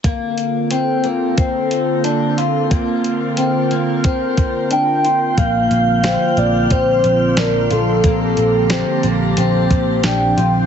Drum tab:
HH |xxxxxxxx|xxxxxxxx|xxxxxxxx|xxxxxxxx|
SD |--------|--------|--o---o-|--o---o-|
BD |o---o---|o---oo--|o---o---|o----o--|